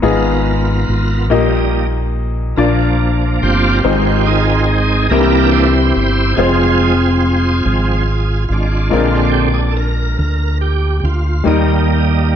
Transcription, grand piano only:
0.02 1.26 G#2 medium
0.02 1.30 B3 medium
0.02 1.30 F4 medium
0.02 1.30 G#4 medium
0.02 1.30 D#5 medium
1.30 2.53 A#2 medium
1.30 2.56 A#3 medium
1.30 2.57 D#4 medium
1.30 2.58 G4 medium
1.30 2.58 D#5 medium
2.57 3.80 A#2 medium
2.57 3.84 A#3 medium
2.57 3.84 D4 medium
2.57 3.85 F4 medium
2.57 3.85 D5 medium
3.84 5.07 G#2 medium
3.84 5.11 G#3 medium
3.84 5.10 C4 medium
3.84 5.11 D#4 medium
3.84 5.11 C5 medium
5.11 6.34 C3 medium
5.11 6.38 G3 medium
5.11 6.36 C4 medium
5.11 6.38 E4 medium
5.11 6.39 A#4 medium
6.37 8.88 G#3 medium
6.37 8.88 C4 soft
6.37 8.88 F4 medium
6.37 8.88 C5 medium
8.90 10.14 A#2 medium
8.90 11.41 G#3 medium
8.90 8.98 C4 soft
8.90 11.42 F4 medium
8.90 11.42 A#4 medium
8.97 11.44 D4 soft
11.44 12.36 D#3 medium
11.44 12.36 G3 medium
11.44 12.36 A#3 medium
11.44 12.36 D#4 medium
11.44 12.36 A#4 medium

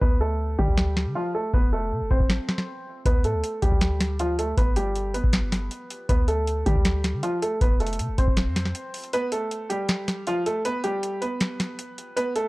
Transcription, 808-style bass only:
0.02 0.56 D2 loud
0.59 0.67 D3 loud
0.68 1.07 D2 loud
1.06 1.15 D3 loud
1.53 1.93 F1 loud
1.92 2.02 C3 loud
2.01 2.10 F1 loud
2.11 2.19 F1 loud
2.20 2.30 F1 loud
3.06 3.26 D2 loud
3.25 3.35 A2 loud
3.34 3.43 D2 loud
3.63 3.71 D2 loud
3.72 4.54 D2 loud
4.57 5.21 G1 loud
5.24 5.69 G1 loud
6.09 6.64 D2 loud
6.66 6.75 D3 loud
6.76 7.15 D2 loud
7.14 7.23 D3 loud
7.61 8.01 F1 loud
7.99 8.10 C3 loud
8.09 8.18 F1 loud
8.18 8.27 F1 loud
8.28 8.48 F1 loud
8.46 8.74 F2 medium

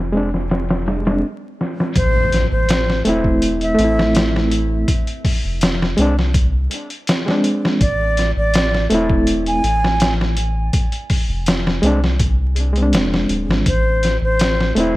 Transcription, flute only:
1.97 2.46 C5 loud
2.52 3.01 C5 medium
3.62 4.27 E5 loud
7.82 8.31 D5 loud
8.38 8.86 D5 loud
9.48 10.13 G#5 loud
13.68 14.17 C5 loud
14.24 14.72 C5 loud

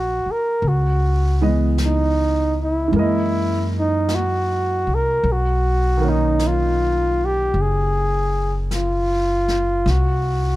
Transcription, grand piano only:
0.00 0.60 F#3 soft
0.00 0.61 A#3 soft
0.00 0.63 C#4 soft
0.00 0.65 F5 soft
1.41 2.86 E3 soft
1.41 2.90 G#3 soft
1.41 2.94 B3 soft
1.41 2.94 D#5 soft
2.88 5.22 E3 soft
2.88 5.23 G#3 soft
2.96 5.25 A#3 soft
2.96 5.27 D#5 soft
5.97 9.83 D#3 soft
5.97 9.85 A#3 soft
6.04 9.87 C#4 soft
6.04 9.89 D#4 soft

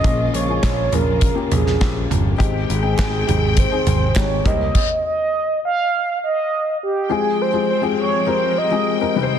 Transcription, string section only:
0.00 2.35 C#3 medium
0.00 4.41 G#3 medium
0.00 2.35 F4 medium
0.04 2.37 A#3 medium
2.40 4.73 D#3 medium
2.40 4.44 C4 medium
2.40 4.73 G5 medium
4.46 4.75 A#3 medium
4.46 4.75 C4 medium
7.09 9.13 F3 medium
7.09 9.13 G#3 medium
7.09 9.13 C4 medium
7.09 9.39 G5 medium
9.15 9.39 D#3 medium
9.15 9.39 G3 medium
9.15 9.39 C4 medium

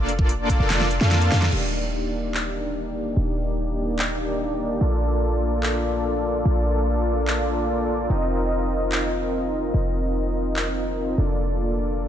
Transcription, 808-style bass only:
0.00 0.58 F1 loud
0.60 0.99 F1 loud
1.01 1.30 F2 loud
1.32 1.50 F2 loud
1.52 3.15 D#1 medium
3.17 4.79 D#1 medium
4.81 6.43 A#1 medium
6.45 8.08 A#1 medium
8.10 9.72 F1 medium
9.74 11.16 F1 medium
11.18 12.08 F1 medium

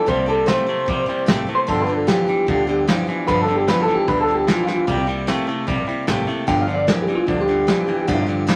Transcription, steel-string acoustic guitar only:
0.06 0.27 C3 medium
0.06 0.27 G3 medium
0.06 0.28 A#3 medium
0.06 0.27 E4 medium
0.06 0.25 G4 medium
0.26 0.46 A#3 soft
0.26 0.47 E4 soft
0.26 0.47 G4 medium
0.46 0.67 C3 medium
0.46 0.67 G3 medium
0.46 0.68 A#3 medium
0.46 0.67 E4 medium
0.46 0.65 G4 medium
0.66 0.86 A#3 soft
0.66 0.87 E4 soft
0.66 0.87 G4 medium
0.86 1.07 G3 medium
0.86 1.08 A#3 medium
0.86 1.07 E4 medium
0.86 1.05 G4 medium
1.06 1.27 A#3 medium
1.06 1.27 E4 medium
1.06 1.27 G4 medium
1.26 1.47 C3 medium
1.26 1.48 G3 medium
1.26 1.48 A#3 medium
1.26 1.47 E4 medium
1.26 1.45 G4 loud
1.47 1.68 A#3 soft
1.47 1.68 E4 soft
1.47 1.67 G4 medium
1.67 1.87 G2 medium
1.67 1.88 D3 medium
1.67 1.88 F3 medium
1.67 1.88 B3 medium
1.67 1.87 F4 medium
1.67 1.85 G4 loud
1.87 2.07 F3 soft
1.87 2.07 B3 soft
1.87 2.08 F4 medium
1.87 2.07 G4 medium
2.07 2.27 G2 medium
2.07 2.28 D3 medium
2.07 2.28 F3 medium
2.07 2.28 B3 medium
2.07 2.27 F4 medium
2.07 2.25 G4 medium
2.27 2.45 F3 soft
2.27 2.47 B3 soft
2.27 2.48 F4 medium
2.27 2.47 G4 medium
2.47 2.67 F3 medium
2.47 2.68 B3 medium
2.47 2.67 F4 medium
2.47 2.66 G4 medium
2.67 2.87 F3 soft
2.67 2.88 B3 medium
2.67 2.88 F4 medium
2.67 2.87 G4 medium
2.87 3.08 G2 medium
2.87 3.08 D3 medium
2.87 3.08 F3 medium
2.87 3.08 B3 loud
2.87 3.07 F4 loud
2.87 3.06 G4 loud
3.07 3.28 F3 soft
3.07 3.28 B3 medium
3.07 3.28 F4 soft
3.07 3.27 G4 medium
3.27 3.48 G2 medium
3.27 3.48 D3 medium
3.27 3.48 F3 medium
3.27 3.49 B3 medium
3.27 3.48 F4 medium
3.27 3.46 G4 medium
3.48 3.68 F3 soft
3.48 3.68 B3 soft
3.48 3.68 F4 soft
3.48 3.68 G4 medium
3.68 3.88 G2 medium
3.68 3.88 D3 medium
3.68 3.88 F3 medium
3.68 3.89 B3 medium
3.68 3.88 F4 loud
3.68 3.86 G4 medium
3.88 4.06 F3 medium
3.88 4.08 F4 soft
3.88 4.08 G4 medium
4.08 4.28 F3 medium
4.08 4.28 B3 medium
4.08 4.27 F4 medium
4.08 4.26 G4 medium
4.27 4.47 F3 soft
4.27 4.48 B3 soft
4.27 4.48 F4 medium
4.27 4.47 G4 soft
4.47 4.68 G2 medium
4.47 4.68 D3 medium
4.47 4.68 F3 medium
4.47 4.68 B3 medium
4.47 4.67 F4 medium
4.47 4.66 G4 medium
4.67 4.88 F3 soft
4.67 4.88 B3 soft
4.67 4.88 F4 soft
4.67 4.87 G4 soft
4.87 5.07 C3 medium
4.87 5.08 G3 medium
4.87 5.08 A#3 medium
4.87 5.08 E4 medium
4.87 5.06 G4 loud
5.07 5.27 A#3 soft
5.07 5.28 E4 medium
5.07 5.27 G4 medium
5.27 5.47 C3 medium
5.27 5.48 G3 medium
5.27 5.48 A#3 loud
5.27 5.47 E4 loud
5.27 5.46 G4 loud
5.47 5.67 A#3 soft
5.47 5.68 E4 medium
5.47 5.67 G4 medium
5.67 5.87 G3 medium
5.67 5.88 A#3 medium
5.67 5.87 E4 medium
5.67 5.85 G4 medium
5.87 6.07 A#3 medium
5.87 6.08 E4 medium
5.87 6.07 G4 medium
6.07 6.28 C3 medium
6.07 6.28 G3 medium
6.07 6.28 A#3 loud
6.07 6.28 E4 loud
6.07 6.26 G4 loud
6.27 6.48 A#3 soft
6.27 6.48 E4 medium
6.27 6.47 G4 medium
6.47 6.67 G2 medium
6.47 6.68 D3 medium
6.47 6.68 F3 medium
6.47 6.68 B3 medium
6.47 6.67 F4 medium
6.47 6.65 G4 medium
6.67 6.87 F3 soft
6.67 6.87 B3 soft
6.67 6.88 F4 medium
6.67 6.87 G4 medium
6.87 7.07 G2 medium
6.87 7.08 D3 medium
6.87 7.08 F3 medium
6.87 7.08 B3 medium
6.87 7.07 F4 loud
6.87 7.06 G4 medium
7.07 7.25 F3 soft
7.07 7.27 B3 soft
7.07 7.28 F4 medium
7.07 7.27 G4 medium
7.27 7.47 F3 medium
7.27 7.48 B3 medium
7.27 7.47 F4 medium
7.27 7.46 G4 medium
7.47 7.67 F3 soft
7.47 7.67 B3 soft
7.47 7.68 F4 soft
7.47 7.68 G4 soft
7.67 7.87 G2 medium
7.67 7.88 D3 medium
7.67 7.88 F3 medium
7.67 7.88 B3 medium
7.67 7.87 F4 medium
7.67 7.86 G4 medium
7.87 8.07 F3 soft
7.87 8.07 B3 soft
7.87 8.08 F4 medium
7.87 8.07 G4 soft
8.07 8.28 G2 medium
8.07 8.28 D3 loud
8.07 8.28 F3 medium
8.07 8.28 B3 loud
8.07 8.27 F4 loud
8.07 8.25 G4 loud
8.26 8.47 F3 soft
8.26 8.47 B3 medium
8.26 8.48 F4 medium
8.26 8.47 G4 medium
8.47 8.56 G2 medium
8.47 8.56 D3 medium
8.47 8.56 F3 medium
8.47 8.56 B3 loud
8.47 8.56 F4 loud
8.47 8.56 G4 loud

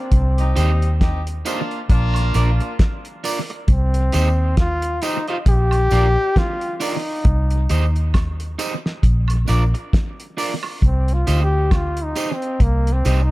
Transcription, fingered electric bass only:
0.12 0.53 C2 loud
0.57 1.42 D#2 medium
1.90 2.31 A#1 medium
2.35 2.59 A#1 medium
3.69 4.09 C2 loud
4.14 4.99 D#2 medium
5.47 5.87 A#1 loud
5.92 6.15 A#1 medium
7.25 7.66 C2 loud
7.70 8.55 D#2 medium
9.04 9.44 A#1 medium
9.49 9.72 A#1 medium
10.83 11.23 C2 loud
11.28 12.12 D2 medium
12.60 13.01 C2 loud
13.06 13.29 C2 medium

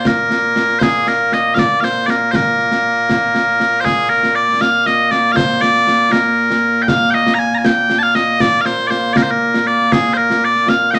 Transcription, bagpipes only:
0.00 10.99 A#2 medium
0.00 10.99 A#3 medium
0.07 0.79 A#4 medium
0.79 1.08 G#4 loud
0.79 0.83 C5 loud
1.08 1.33 A#4 medium
1.33 1.54 D#5 medium
1.54 1.59 F5 medium
1.59 1.80 D5 medium
1.80 2.06 C5 medium
1.80 1.84 F5 medium
2.06 2.10 D5 medium
2.10 2.31 A#4 medium
2.31 2.36 C5 medium
2.36 3.81 A#4 medium
3.81 3.85 C5 loud
3.85 4.09 G#4 loud
4.09 4.35 A#4 medium
4.35 4.61 D5 medium
4.61 4.86 F5 loud
4.86 5.11 D#5 loud
5.11 5.32 D5 medium
5.32 5.61 C5 loud
5.32 5.36 F5 loud
5.61 6.12 D5 loud
6.12 6.82 A#4 medium
6.82 6.88 G5 medium
6.88 7.11 F5 loud
7.11 7.34 D#5 loud
7.11 7.14 G5 loud
7.34 7.39 A#5 loud
7.39 7.55 G#5 loud
7.55 7.65 G#5 medium
7.55 7.58 A#5 medium
7.65 7.99 G5 medium
7.99 8.03 A5 loud
8.03 8.15 F5 loud
8.15 8.41 D#5 medium
8.41 8.61 D5 loud
8.61 8.66 F5 medium
8.66 8.87 C5 medium
8.87 9.13 C5 medium
8.87 8.90 D5 medium
9.13 9.23 A#4 medium
9.13 9.17 D5 medium
9.23 9.31 C5 medium
9.31 9.67 A#4 medium
9.67 9.92 D5 medium
9.92 10.14 G#4 loud
10.14 10.45 A#4 medium
10.14 10.17 C5 medium
10.45 10.69 D5 medium
10.69 10.91 F5 medium
10.91 10.99 D#5 medium
10.91 10.94 G5 medium

